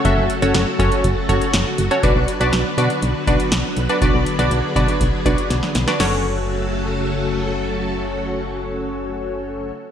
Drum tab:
CC |----------------|----------------|----------------|x---------------|
HH |x-xxx-xxx-xxx-xx|x-xxx-xxx-xxx-xx|x-xxx-xxx-xxx-xx|----------------|
SD |----o-------o---|----o-------o---|------------oooo|o---------------|
BD |o-----o-o-o-----|o---------o-----|o-----o-o-o-----|----------------|

CC |----------------|
HH |----------------|
SD |----------------|
BD |----------------|